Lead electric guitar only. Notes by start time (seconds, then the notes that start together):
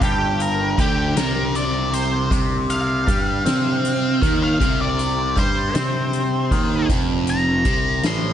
0.03 G4
0.42 A#4
0.80 G4
1.17 A#4
1.56 D5
1.94 C5
2.70 F5
4.43 F5
4.81 D5
5.39 C5
7.30 A#5
8.07 C6